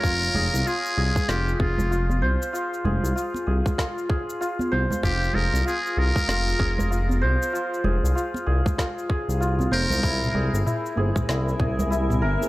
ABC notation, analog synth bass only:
X:1
M:4/4
L:1/16
Q:"Swing 16ths" 1/4=96
K:Fm
V:1 name="Analog synth bass" clef=bass
F,,,2 F,,, C,, z2 C,, z F,,,2 F,,,4 C,, z | z2 F,,, C,, z2 C,, z6 z C,, z | F,,,2 F,,, C,, z2 C,, z F,,,2 F,,,4 C,, z | z2 F,,, C,, z2 C,, z4 C,,3 F,,, C,, |
C,,2 C,, G,,, z2 G,,, z C,,2 C,,4 G,,, z |]